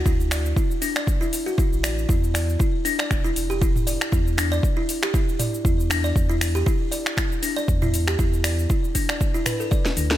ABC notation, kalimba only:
X:1
M:4/4
L:1/16
Q:"Swing 16ths" 1/4=118
K:Em
V:1 name="Kalimba"
E z d z E z D d z E z F E z d z | E z d z E z D d z E z G E z d z | E z D d z E z G E z d z E z D d | z E z G E z d z E z D d z E z G |
E z d z E z D d z E B A d z D A |]